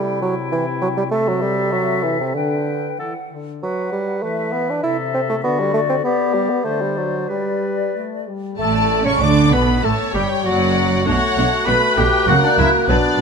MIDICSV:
0, 0, Header, 1, 10, 480
1, 0, Start_track
1, 0, Key_signature, 1, "major"
1, 0, Tempo, 603622
1, 884, Time_signature, 2, 2, 24, 8
1, 1374, Tempo, 630915
1, 2814, Tempo, 606061
1, 5214, Tempo, 641711
1, 6667, Key_signature, 2, "major"
1, 7134, Tempo, 612870
1, 10262, End_track
2, 0, Start_track
2, 0, Title_t, "Violin section"
2, 0, Program_c, 0, 48
2, 6664, Note_on_c, 0, 81, 64
2, 6991, Note_off_c, 0, 81, 0
2, 7027, Note_on_c, 0, 85, 63
2, 7131, Note_on_c, 0, 86, 64
2, 7136, Note_off_c, 0, 85, 0
2, 7368, Note_on_c, 0, 83, 62
2, 7370, Note_off_c, 0, 86, 0
2, 7615, Note_off_c, 0, 83, 0
2, 7621, Note_on_c, 0, 81, 60
2, 7863, Note_on_c, 0, 79, 60
2, 7864, Note_off_c, 0, 81, 0
2, 8101, Note_off_c, 0, 79, 0
2, 8118, Note_on_c, 0, 78, 68
2, 8585, Note_off_c, 0, 78, 0
2, 8594, Note_on_c, 0, 78, 81
2, 9054, Note_off_c, 0, 78, 0
2, 9063, Note_on_c, 0, 83, 76
2, 9298, Note_off_c, 0, 83, 0
2, 9298, Note_on_c, 0, 79, 79
2, 9535, Note_off_c, 0, 79, 0
2, 9537, Note_on_c, 0, 78, 77
2, 9655, Note_off_c, 0, 78, 0
2, 9665, Note_on_c, 0, 74, 79
2, 9774, Note_on_c, 0, 76, 78
2, 9778, Note_off_c, 0, 74, 0
2, 9837, Note_off_c, 0, 76, 0
2, 10002, Note_on_c, 0, 74, 79
2, 10262, Note_off_c, 0, 74, 0
2, 10262, End_track
3, 0, Start_track
3, 0, Title_t, "Flute section"
3, 0, Program_c, 1, 73
3, 0, Note_on_c, 1, 79, 48
3, 867, Note_off_c, 1, 79, 0
3, 888, Note_on_c, 1, 76, 55
3, 1819, Note_off_c, 1, 76, 0
3, 1844, Note_on_c, 1, 79, 42
3, 2320, Note_off_c, 1, 79, 0
3, 2333, Note_on_c, 1, 78, 39
3, 2575, Note_off_c, 1, 78, 0
3, 2816, Note_on_c, 1, 78, 38
3, 3267, Note_off_c, 1, 78, 0
3, 3298, Note_on_c, 1, 76, 45
3, 3768, Note_off_c, 1, 76, 0
3, 3788, Note_on_c, 1, 76, 51
3, 4248, Note_off_c, 1, 76, 0
3, 4269, Note_on_c, 1, 74, 54
3, 4727, Note_off_c, 1, 74, 0
3, 4736, Note_on_c, 1, 74, 59
3, 5185, Note_off_c, 1, 74, 0
3, 5223, Note_on_c, 1, 74, 48
3, 5691, Note_off_c, 1, 74, 0
3, 5704, Note_on_c, 1, 74, 40
3, 6416, Note_off_c, 1, 74, 0
3, 6662, Note_on_c, 1, 81, 60
3, 6990, Note_off_c, 1, 81, 0
3, 7016, Note_on_c, 1, 85, 58
3, 7133, Note_off_c, 1, 85, 0
3, 7141, Note_on_c, 1, 86, 66
3, 7380, Note_off_c, 1, 86, 0
3, 7380, Note_on_c, 1, 83, 59
3, 7434, Note_off_c, 1, 83, 0
3, 7616, Note_on_c, 1, 81, 53
3, 7671, Note_off_c, 1, 81, 0
3, 7860, Note_on_c, 1, 79, 60
3, 7915, Note_off_c, 1, 79, 0
3, 8102, Note_on_c, 1, 78, 69
3, 8571, Note_on_c, 1, 90, 65
3, 8572, Note_off_c, 1, 78, 0
3, 10262, Note_off_c, 1, 90, 0
3, 10262, End_track
4, 0, Start_track
4, 0, Title_t, "Violin section"
4, 0, Program_c, 2, 48
4, 6678, Note_on_c, 2, 74, 58
4, 7109, Note_off_c, 2, 74, 0
4, 7146, Note_on_c, 2, 69, 51
4, 7626, Note_off_c, 2, 69, 0
4, 7635, Note_on_c, 2, 73, 62
4, 8104, Note_off_c, 2, 73, 0
4, 8108, Note_on_c, 2, 74, 58
4, 8585, Note_off_c, 2, 74, 0
4, 8591, Note_on_c, 2, 73, 68
4, 9053, Note_off_c, 2, 73, 0
4, 9059, Note_on_c, 2, 71, 67
4, 9524, Note_off_c, 2, 71, 0
4, 9538, Note_on_c, 2, 70, 78
4, 10009, Note_on_c, 2, 71, 68
4, 10012, Note_off_c, 2, 70, 0
4, 10072, Note_off_c, 2, 71, 0
4, 10262, End_track
5, 0, Start_track
5, 0, Title_t, "Clarinet"
5, 0, Program_c, 3, 71
5, 0, Note_on_c, 3, 64, 46
5, 867, Note_off_c, 3, 64, 0
5, 888, Note_on_c, 3, 69, 51
5, 1819, Note_off_c, 3, 69, 0
5, 1851, Note_on_c, 3, 71, 39
5, 2323, Note_off_c, 3, 71, 0
5, 2338, Note_on_c, 3, 69, 39
5, 2446, Note_off_c, 3, 69, 0
5, 2821, Note_on_c, 3, 71, 39
5, 3269, Note_off_c, 3, 71, 0
5, 3306, Note_on_c, 3, 71, 43
5, 3776, Note_on_c, 3, 69, 48
5, 3788, Note_off_c, 3, 71, 0
5, 4246, Note_off_c, 3, 69, 0
5, 4250, Note_on_c, 3, 66, 56
5, 4719, Note_off_c, 3, 66, 0
5, 4731, Note_on_c, 3, 67, 56
5, 5207, Note_on_c, 3, 72, 47
5, 5218, Note_off_c, 3, 67, 0
5, 5689, Note_on_c, 3, 71, 39
5, 5700, Note_off_c, 3, 72, 0
5, 6423, Note_off_c, 3, 71, 0
5, 6669, Note_on_c, 3, 69, 61
5, 6994, Note_off_c, 3, 69, 0
5, 7012, Note_on_c, 3, 73, 58
5, 7065, Note_off_c, 3, 73, 0
5, 7134, Note_on_c, 3, 74, 58
5, 7376, Note_on_c, 3, 71, 59
5, 7388, Note_off_c, 3, 74, 0
5, 7629, Note_on_c, 3, 69, 53
5, 7641, Note_off_c, 3, 71, 0
5, 7853, Note_off_c, 3, 69, 0
5, 7858, Note_on_c, 3, 67, 57
5, 7968, Note_off_c, 3, 67, 0
5, 8096, Note_on_c, 3, 66, 65
5, 8569, Note_off_c, 3, 66, 0
5, 8587, Note_on_c, 3, 66, 70
5, 9048, Note_on_c, 3, 71, 74
5, 9060, Note_off_c, 3, 66, 0
5, 9295, Note_on_c, 3, 67, 74
5, 9307, Note_off_c, 3, 71, 0
5, 9526, Note_off_c, 3, 67, 0
5, 9530, Note_on_c, 3, 66, 67
5, 9585, Note_off_c, 3, 66, 0
5, 9650, Note_on_c, 3, 62, 60
5, 9704, Note_off_c, 3, 62, 0
5, 9771, Note_on_c, 3, 64, 67
5, 9878, Note_off_c, 3, 64, 0
5, 10001, Note_on_c, 3, 62, 75
5, 10262, Note_off_c, 3, 62, 0
5, 10262, End_track
6, 0, Start_track
6, 0, Title_t, "Bassoon"
6, 0, Program_c, 4, 70
6, 0, Note_on_c, 4, 55, 54
6, 169, Note_off_c, 4, 55, 0
6, 174, Note_on_c, 4, 54, 64
6, 280, Note_off_c, 4, 54, 0
6, 414, Note_on_c, 4, 52, 60
6, 519, Note_off_c, 4, 52, 0
6, 648, Note_on_c, 4, 54, 68
6, 701, Note_off_c, 4, 54, 0
6, 772, Note_on_c, 4, 55, 64
6, 825, Note_off_c, 4, 55, 0
6, 883, Note_on_c, 4, 57, 76
6, 1023, Note_on_c, 4, 54, 64
6, 1035, Note_off_c, 4, 57, 0
6, 1126, Note_on_c, 4, 55, 67
6, 1138, Note_off_c, 4, 54, 0
6, 1368, Note_on_c, 4, 54, 64
6, 1380, Note_off_c, 4, 55, 0
6, 1607, Note_on_c, 4, 52, 61
6, 1618, Note_off_c, 4, 54, 0
6, 1726, Note_off_c, 4, 52, 0
6, 1736, Note_on_c, 4, 48, 49
6, 1847, Note_on_c, 4, 50, 51
6, 1858, Note_off_c, 4, 48, 0
6, 2331, Note_off_c, 4, 50, 0
6, 2820, Note_on_c, 4, 54, 53
6, 3044, Note_off_c, 4, 54, 0
6, 3053, Note_on_c, 4, 55, 55
6, 3296, Note_on_c, 4, 57, 56
6, 3308, Note_off_c, 4, 55, 0
6, 3531, Note_on_c, 4, 59, 63
6, 3543, Note_off_c, 4, 57, 0
6, 3669, Note_on_c, 4, 62, 65
6, 3681, Note_off_c, 4, 59, 0
6, 3771, Note_off_c, 4, 62, 0
6, 3775, Note_on_c, 4, 64, 72
6, 3883, Note_off_c, 4, 64, 0
6, 4018, Note_on_c, 4, 60, 66
6, 4071, Note_off_c, 4, 60, 0
6, 4139, Note_on_c, 4, 57, 65
6, 4191, Note_off_c, 4, 57, 0
6, 4253, Note_on_c, 4, 59, 75
6, 4382, Note_on_c, 4, 55, 66
6, 4394, Note_off_c, 4, 59, 0
6, 4486, Note_off_c, 4, 55, 0
6, 4490, Note_on_c, 4, 57, 71
6, 4544, Note_off_c, 4, 57, 0
6, 4613, Note_on_c, 4, 60, 67
6, 4666, Note_off_c, 4, 60, 0
6, 4728, Note_on_c, 4, 59, 72
6, 4970, Note_on_c, 4, 55, 64
6, 4981, Note_off_c, 4, 59, 0
6, 5095, Note_on_c, 4, 59, 59
6, 5107, Note_off_c, 4, 55, 0
6, 5212, Note_on_c, 4, 57, 61
6, 5223, Note_off_c, 4, 59, 0
6, 5337, Note_on_c, 4, 55, 53
6, 5348, Note_off_c, 4, 57, 0
6, 5453, Note_on_c, 4, 54, 55
6, 5465, Note_off_c, 4, 55, 0
6, 5689, Note_off_c, 4, 54, 0
6, 5693, Note_on_c, 4, 55, 48
6, 6172, Note_off_c, 4, 55, 0
6, 6664, Note_on_c, 4, 57, 60
6, 6991, Note_off_c, 4, 57, 0
6, 7016, Note_on_c, 4, 61, 57
6, 7129, Note_on_c, 4, 62, 64
6, 7141, Note_off_c, 4, 61, 0
6, 7370, Note_off_c, 4, 62, 0
6, 7375, Note_on_c, 4, 59, 63
6, 7614, Note_off_c, 4, 59, 0
6, 7618, Note_on_c, 4, 57, 53
6, 7728, Note_off_c, 4, 57, 0
6, 7865, Note_on_c, 4, 55, 59
6, 7974, Note_off_c, 4, 55, 0
6, 8108, Note_on_c, 4, 54, 58
6, 8575, Note_off_c, 4, 54, 0
6, 8589, Note_on_c, 4, 57, 54
6, 9505, Note_off_c, 4, 57, 0
6, 9540, Note_on_c, 4, 58, 62
6, 10015, Note_on_c, 4, 59, 63
6, 10026, Note_off_c, 4, 58, 0
6, 10262, Note_off_c, 4, 59, 0
6, 10262, End_track
7, 0, Start_track
7, 0, Title_t, "Viola section"
7, 0, Program_c, 5, 48
7, 6657, Note_on_c, 5, 57, 61
7, 6988, Note_off_c, 5, 57, 0
7, 7007, Note_on_c, 5, 61, 58
7, 7129, Note_off_c, 5, 61, 0
7, 7131, Note_on_c, 5, 62, 63
7, 7368, Note_on_c, 5, 59, 58
7, 7375, Note_off_c, 5, 62, 0
7, 7615, Note_off_c, 5, 59, 0
7, 7620, Note_on_c, 5, 57, 51
7, 7682, Note_off_c, 5, 57, 0
7, 7860, Note_on_c, 5, 55, 59
7, 7923, Note_off_c, 5, 55, 0
7, 8102, Note_on_c, 5, 54, 67
7, 8572, Note_off_c, 5, 54, 0
7, 8576, Note_on_c, 5, 57, 51
7, 8577, Note_on_c, 5, 62, 51
7, 8638, Note_off_c, 5, 57, 0
7, 8640, Note_off_c, 5, 62, 0
7, 8820, Note_on_c, 5, 62, 51
7, 8822, Note_on_c, 5, 57, 49
7, 8883, Note_off_c, 5, 62, 0
7, 8885, Note_off_c, 5, 57, 0
7, 9050, Note_on_c, 5, 62, 52
7, 9051, Note_on_c, 5, 57, 59
7, 9113, Note_off_c, 5, 57, 0
7, 9113, Note_off_c, 5, 62, 0
7, 9292, Note_on_c, 5, 62, 56
7, 9293, Note_on_c, 5, 57, 54
7, 9355, Note_off_c, 5, 57, 0
7, 9355, Note_off_c, 5, 62, 0
7, 9525, Note_on_c, 5, 54, 60
7, 9525, Note_on_c, 5, 58, 61
7, 9587, Note_off_c, 5, 58, 0
7, 9588, Note_off_c, 5, 54, 0
7, 9765, Note_on_c, 5, 54, 57
7, 9767, Note_on_c, 5, 58, 55
7, 9827, Note_off_c, 5, 54, 0
7, 9830, Note_off_c, 5, 58, 0
7, 10003, Note_on_c, 5, 59, 61
7, 10005, Note_on_c, 5, 54, 65
7, 10065, Note_off_c, 5, 59, 0
7, 10067, Note_off_c, 5, 54, 0
7, 10262, End_track
8, 0, Start_track
8, 0, Title_t, "French horn section"
8, 0, Program_c, 6, 60
8, 0, Note_on_c, 6, 48, 52
8, 1819, Note_off_c, 6, 48, 0
8, 1848, Note_on_c, 6, 50, 42
8, 2274, Note_off_c, 6, 50, 0
8, 2331, Note_on_c, 6, 52, 46
8, 2440, Note_off_c, 6, 52, 0
8, 2578, Note_on_c, 6, 50, 37
8, 2811, Note_off_c, 6, 50, 0
8, 3301, Note_on_c, 6, 52, 45
8, 3769, Note_off_c, 6, 52, 0
8, 3777, Note_on_c, 6, 48, 56
8, 4243, Note_off_c, 6, 48, 0
8, 4253, Note_on_c, 6, 50, 60
8, 4720, Note_off_c, 6, 50, 0
8, 4730, Note_on_c, 6, 59, 57
8, 5182, Note_off_c, 6, 59, 0
8, 5212, Note_on_c, 6, 50, 54
8, 5693, Note_on_c, 6, 55, 39
8, 5695, Note_off_c, 6, 50, 0
8, 6124, Note_off_c, 6, 55, 0
8, 6183, Note_on_c, 6, 57, 45
8, 6410, Note_off_c, 6, 57, 0
8, 6429, Note_on_c, 6, 55, 36
8, 6655, Note_on_c, 6, 57, 56
8, 6668, Note_off_c, 6, 55, 0
8, 6986, Note_off_c, 6, 57, 0
8, 7012, Note_on_c, 6, 61, 59
8, 7128, Note_off_c, 6, 61, 0
8, 7129, Note_on_c, 6, 62, 64
8, 7369, Note_on_c, 6, 59, 58
8, 7374, Note_off_c, 6, 62, 0
8, 7609, Note_on_c, 6, 57, 53
8, 7616, Note_off_c, 6, 59, 0
8, 7721, Note_off_c, 6, 57, 0
8, 7855, Note_on_c, 6, 55, 59
8, 8090, Note_on_c, 6, 54, 65
8, 8097, Note_off_c, 6, 55, 0
8, 8576, Note_off_c, 6, 54, 0
8, 8584, Note_on_c, 6, 66, 56
8, 8586, Note_on_c, 6, 57, 53
8, 9504, Note_off_c, 6, 57, 0
8, 9539, Note_on_c, 6, 58, 63
8, 10012, Note_off_c, 6, 58, 0
8, 10018, Note_on_c, 6, 54, 67
8, 10262, Note_off_c, 6, 54, 0
8, 10262, Note_off_c, 6, 66, 0
8, 10262, End_track
9, 0, Start_track
9, 0, Title_t, "Cello section"
9, 0, Program_c, 7, 48
9, 6667, Note_on_c, 7, 45, 59
9, 6993, Note_off_c, 7, 45, 0
9, 7017, Note_on_c, 7, 49, 55
9, 7133, Note_off_c, 7, 49, 0
9, 7141, Note_on_c, 7, 50, 61
9, 7375, Note_on_c, 7, 47, 59
9, 7380, Note_off_c, 7, 50, 0
9, 7619, Note_off_c, 7, 47, 0
9, 7622, Note_on_c, 7, 45, 57
9, 7684, Note_off_c, 7, 45, 0
9, 7866, Note_on_c, 7, 43, 61
9, 7929, Note_off_c, 7, 43, 0
9, 8114, Note_on_c, 7, 42, 69
9, 8578, Note_off_c, 7, 42, 0
9, 8592, Note_on_c, 7, 47, 66
9, 8655, Note_off_c, 7, 47, 0
9, 8830, Note_on_c, 7, 47, 57
9, 8893, Note_off_c, 7, 47, 0
9, 9067, Note_on_c, 7, 47, 61
9, 9130, Note_off_c, 7, 47, 0
9, 9306, Note_on_c, 7, 47, 64
9, 9368, Note_off_c, 7, 47, 0
9, 9540, Note_on_c, 7, 49, 72
9, 9603, Note_off_c, 7, 49, 0
9, 9778, Note_on_c, 7, 49, 61
9, 9841, Note_off_c, 7, 49, 0
9, 10014, Note_on_c, 7, 47, 72
9, 10077, Note_off_c, 7, 47, 0
9, 10262, End_track
10, 0, Start_track
10, 0, Title_t, "Double bass section"
10, 0, Program_c, 8, 48
10, 6665, Note_on_c, 8, 33, 61
10, 6992, Note_off_c, 8, 33, 0
10, 7121, Note_on_c, 8, 38, 60
10, 7370, Note_off_c, 8, 38, 0
10, 7371, Note_on_c, 8, 35, 61
10, 7617, Note_off_c, 8, 35, 0
10, 7619, Note_on_c, 8, 33, 51
10, 7682, Note_off_c, 8, 33, 0
10, 7861, Note_on_c, 8, 31, 62
10, 7923, Note_off_c, 8, 31, 0
10, 8103, Note_on_c, 8, 30, 60
10, 8573, Note_off_c, 8, 30, 0
10, 8578, Note_on_c, 8, 35, 59
10, 8641, Note_off_c, 8, 35, 0
10, 8817, Note_on_c, 8, 35, 59
10, 8880, Note_off_c, 8, 35, 0
10, 9058, Note_on_c, 8, 35, 60
10, 9120, Note_off_c, 8, 35, 0
10, 9296, Note_on_c, 8, 35, 60
10, 9358, Note_off_c, 8, 35, 0
10, 9529, Note_on_c, 8, 37, 74
10, 9592, Note_off_c, 8, 37, 0
10, 9763, Note_on_c, 8, 37, 62
10, 9825, Note_off_c, 8, 37, 0
10, 10004, Note_on_c, 8, 35, 69
10, 10066, Note_off_c, 8, 35, 0
10, 10262, End_track
0, 0, End_of_file